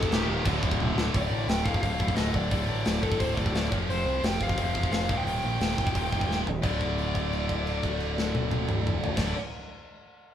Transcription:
0.00 0.26 D#2 loud
0.00 0.26 A#2 loud
0.00 0.25 D#3 loud
0.00 0.12 A4 medium
0.00 kick loud
0.10 0.23 D#1 medium
0.10 0.44 G4 medium
0.10 snare loud
0.10 china medium
0.26 0.40 D#1 medium
0.26 0.44 D#2 medium
0.26 0.44 A#2 medium
0.26 0.43 D#3 medium
0.45 0.58 D1 loud
0.45 1.11 D2 loud
0.45 1.13 A2 loud
0.45 1.13 D3 loud
0.45 kick loud
0.45 china medium
0.63 0.75 D1 medium
0.63 kick medium
0.71 kick medium
0.79 0.91 D1 loud
0.79 high tom medium
0.96 1.09 D1 loud
0.96 snare loud
1.13 1.28 D1 medium
1.13 1.98 D2 medium
1.13 1.98 A2 medium
1.13 1.98 D3 loud
1.13 kick loud
1.13 open hi-hat medium
1.17 1.47 D5 medium
1.30 1.44 A1 medium
1.48 1.62 D1 medium
1.48 1.66 G5 loud
1.48 snare loud
1.48 open hi-hat medium
1.64 1.79 D1 medium
1.64 2.49 D2 medium
1.64 2.50 A2 medium
1.64 2.49 D3 medium
1.64 1.80 F5 loud
1.64 kick medium
1.74 kick medium
1.81 1.96 D1 medium
1.81 2.15 F5 loud
1.81 kick medium
1.81 open hi-hat medium
1.99 2.14 D1 medium
1.99 2.14 D2 medium
1.99 2.15 A2 medium
1.99 2.15 D3 medium
1.99 kick medium
2.08 kick medium
2.15 2.31 D1 loud
2.15 2.48 D2 medium
2.15 2.50 A2 medium
2.15 2.50 D3 medium
2.15 2.35 D#5 loud
2.15 snare loud
2.15 open hi-hat medium
2.34 2.48 D1 loud
2.34 3.05 D5 loud
2.34 kick medium
2.50 2.65 D1 medium
2.50 3.35 D2 medium
2.50 3.35 A2 medium
2.50 3.34 D3 loud
2.50 kick loud
2.50 open hi-hat medium
2.69 2.82 A1 medium
2.85 2.99 D1 medium
2.85 snare loud
2.85 open hi-hat medium
3.01 3.17 D1 medium
3.01 3.70 D2 medium
3.01 3.70 A2 medium
3.01 3.69 D3 medium
3.01 3.19 A4 medium
3.01 kick medium
3.12 kick medium
3.19 3.34 D1 medium
3.19 3.37 C5 medium
3.19 kick loud
3.19 open hi-hat medium
3.34 3.51 D1 medium
3.34 3.52 D2 medium
3.34 3.52 A2 medium
3.34 3.52 D3 medium
3.34 3.67 D5 medium
3.34 kick medium
3.46 kick medium
3.53 3.68 D1 loud
3.53 3.69 D2 medium
3.53 3.70 A2 medium
3.53 3.70 D3 medium
3.53 snare loud
3.53 open hi-hat soft
3.71 3.86 F1 medium
3.71 4.56 F2 medium
3.71 4.56 C3 loud
3.71 4.57 F3 loud
3.71 kick loud
3.89 4.03 F1 medium
3.89 4.24 C5 medium
3.89 open hi-hat medium
4.05 4.19 C2 medium
4.22 4.37 F1 medium
4.22 5.07 F2 medium
4.22 5.08 C3 medium
4.22 5.09 F3 medium
4.22 4.42 G5 loud
4.22 snare loud
4.22 open hi-hat medium
4.41 4.54 F1 medium
4.41 4.91 F5 medium
4.41 kick medium
4.49 kick medium
4.57 4.72 F1 medium
4.57 4.73 F2 medium
4.57 4.74 C3 medium
4.57 4.73 F3 medium
4.57 kick loud
4.57 open hi-hat medium
4.74 4.89 F1 medium
4.74 5.08 F2 medium
4.74 5.08 C3 medium
4.74 5.08 F3 medium
4.74 kick medium
4.83 kick medium
4.92 5.06 F1 loud
4.92 5.18 F5 medium
4.92 snare loud
4.92 open hi-hat medium
5.08 5.23 D#1 medium
5.08 5.93 D#2 medium
5.08 5.94 A#2 medium
5.08 5.95 D#3 medium
5.08 kick loud
5.17 5.23 G5 medium
5.25 5.39 D#1 medium
5.25 6.42 G5 medium
5.25 open hi-hat medium
5.44 5.57 A#1 medium
5.59 5.74 D#1 medium
5.59 6.45 D#2 medium
5.59 6.46 A#2 medium
5.59 6.46 D#3 medium
5.59 snare loud
5.59 open hi-hat medium
5.78 5.92 D#1 medium
5.78 kick medium
5.87 kick medium
5.95 6.09 D#1 medium
5.95 6.11 D#2 medium
5.95 6.11 A#2 medium
5.95 6.10 D#3 medium
5.95 kick medium
5.95 open hi-hat medium
6.12 6.26 D#1 medium
6.12 6.46 D#2 medium
6.12 6.46 A#2 medium
6.12 6.45 D#3 medium
6.12 kick medium
6.21 kick medium
6.29 6.43 D#1 medium
6.29 snare medium
6.46 6.60 D#1 medium
6.46 floor tom medium
6.62 9.10 D1 medium
6.62 9.15 D2 medium
6.62 9.18 A2 medium
6.62 9.19 D3 medium
6.62 9.10 D5 medium
6.62 kick medium
6.62 crash medium
6.81 kick medium
6.81 crash soft
6.98 crash soft
7.15 kick medium
7.15 crash soft
7.33 crash soft
7.49 kick medium
7.49 crash soft
7.67 crash soft
7.83 kick medium
7.83 crash soft
8.00 crash soft
8.18 snare medium
8.35 high tom medium
8.51 high tom medium
8.69 mid tom medium
8.87 mid tom medium
9.04 floor tom loud
9.15 9.32 D1 medium
9.15 9.32 D2 medium
9.15 9.33 A2 medium
9.15 9.32 D5 medium
9.15 kick loud
9.15 snare loud
9.15 crash loud
9.20 9.34 D3 medium

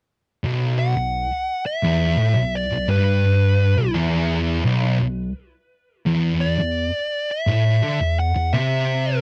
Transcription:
0.44 0.95 B1 loud
0.79 1.63 F#5 loud
0.97 1.25 B1 medium
1.66 2.57 E5 loud
1.84 2.18 E2 medium
2.19 2.35 A2 loud
2.36 2.65 B1 medium
2.55 2.90 D5 medium
2.72 2.88 B1 medium
2.89 3.76 G2 loud
2.89 3.92 B4 medium
3.76 3.94 B1 medium
3.94 4.64 E2 loud
4.65 4.99 B1 medium
5.00 5.29 B1 medium
6.06 6.58 E2 loud
6.41 7.32 D5 medium
6.59 6.87 E2 medium
7.31 8.19 E5 medium
7.47 7.81 A2 medium
7.83 7.99 D3 loud
8.00 8.28 E2 medium
8.19 8.54 F#5 loud
8.35 8.53 E2 medium
8.53 9.21 C3 medium
8.53 9.20 E5 medium

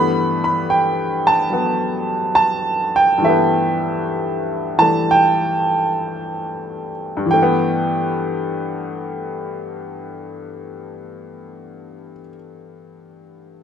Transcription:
0.00 3.16 G2 medium
0.00 3.20 E3 soft
0.00 3.24 A3 medium
0.00 1.52 B3 medium
0.00 0.40 B5 medium
0.44 0.70 B5 medium
0.70 1.28 G5 medium
1.27 2.06 A5 medium
1.50 3.23 F#3 soft
1.50 3.25 B3 soft
2.35 2.92 A5 loud
2.96 3.25 G5 medium
3.18 7.15 G2 medium
3.18 4.77 E3 soft
3.25 4.80 A3 soft
3.25 4.12 E5 medium
3.29 7.33 B3 medium
4.78 7.24 E3 soft
4.78 7.31 G3 soft
4.78 7.32 A3 soft
4.78 5.13 A5 medium
5.11 6.90 G5 medium
7.17 12.11 G2 medium
7.26 12.20 E3 medium
7.31 12.27 A3 medium
7.31 12.21 G5 medium
7.42 12.36 B3 medium

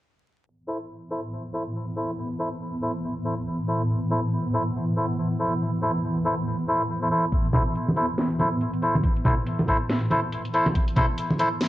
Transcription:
0.47 11.68 A2 medium
0.47 11.68 E3 medium
0.47 11.68 B3 medium
0.68 0.77 E4 medium
0.68 0.77 A4 medium
0.68 0.77 C5 medium
1.11 1.20 E4 medium
1.11 1.20 A4 medium
1.11 1.20 C5 medium
1.54 1.63 E4 medium
1.54 1.63 A4 medium
1.54 1.63 C5 medium
1.97 2.11 E4 medium
1.97 2.11 A4 medium
1.97 2.11 C5 medium
2.39 2.49 E4 medium
2.39 2.49 A4 medium
2.39 2.49 C5 loud
2.82 2.91 E4 medium
2.82 2.91 A4 medium
2.82 2.91 C5 medium
3.25 3.34 E4 medium
3.25 3.34 A4 medium
3.25 3.34 C5 medium
3.68 3.82 E4 medium
3.68 3.82 A4 medium
3.68 3.82 C5 medium
4.11 4.20 E4 medium
4.11 4.20 A4 medium
4.11 4.20 C5 loud
4.54 4.63 E4 medium
4.54 4.63 A4 medium
4.54 4.63 C5 loud
4.97 5.06 E4 medium
4.97 5.06 A4 medium
4.97 5.06 C5 medium
5.39 5.54 E4 medium
5.39 5.54 A4 medium
5.39 5.54 C5 medium
5.82 5.91 E4 medium
5.82 5.91 A4 medium
5.82 5.91 C5 loud
6.25 6.34 E4 medium
6.25 6.34 A4 medium
6.25 6.34 C5 medium
6.68 6.82 E4 medium
6.68 6.82 A4 medium
6.68 6.82 C5 medium
7.02 7.09 E4 medium
7.02 7.08 A4 medium
7.02 7.09 C5 medium
7.11 7.25 E4 medium
7.11 7.25 A4 medium
7.11 7.25 C5 medium
7.32 kick loud
7.32 closed hi-hat medium
7.45 closed hi-hat soft
7.53 7.63 E4 medium
7.53 7.63 A4 medium
7.53 7.63 C5 loud
7.53 kick medium
7.53 closed hi-hat medium
7.53 low conga medium
7.75 closed hi-hat medium
7.88 high conga medium
7.96 8.06 E4 medium
7.96 8.06 A4 medium
7.96 8.06 C5 medium
7.96 closed hi-hat soft
8.18 snare loud
8.18 closed hi-hat medium
8.39 8.49 E4 medium
8.39 8.49 A4 medium
8.39 8.49 C5 medium
8.39 closed hi-hat soft
8.39 high conga medium
8.61 closed hi-hat medium
8.74 closed hi-hat soft
8.82 8.96 E4 medium
8.82 8.96 A4 medium
8.82 8.96 C5 medium
8.82 closed hi-hat soft
8.95 high conga medium
9.04 kick loud
9.04 closed hi-hat medium
9.16 closed hi-hat soft
9.25 9.34 E4 medium
9.25 9.34 A4 medium
9.25 9.34 C5 loud
9.25 kick loud
9.25 closed hi-hat medium
9.25 low conga medium
9.47 closed hi-hat medium
9.59 high conga medium
9.68 9.77 E4 medium
9.68 9.77 A4 medium
9.68 9.77 C5 medium
9.68 kick medium
9.68 closed hi-hat soft
9.89 snare loud
9.89 closed hi-hat medium
10.10 10.20 E4 medium
10.10 10.20 A4 medium
10.10 10.20 C5 medium
10.10 closed hi-hat soft
10.10 high conga medium
10.32 closed hi-hat medium
10.45 closed hi-hat soft
10.54 10.68 E4 medium
10.54 10.68 A4 medium
10.54 10.68 C5 medium
10.54 closed hi-hat soft
10.66 high conga medium
10.75 kick loud
10.75 closed hi-hat medium
10.88 closed hi-hat soft
10.96 11.06 E4 loud
10.96 11.06 A4 medium
10.96 11.06 C5 loud
10.96 kick loud
10.96 closed hi-hat medium
10.96 low conga medium
11.18 closed hi-hat medium
11.30 high conga medium
11.39 11.49 E4 medium
11.39 11.49 A4 medium
11.39 11.49 C5 medium
11.39 closed hi-hat medium
11.61 snare loud
11.61 closed hi-hat medium

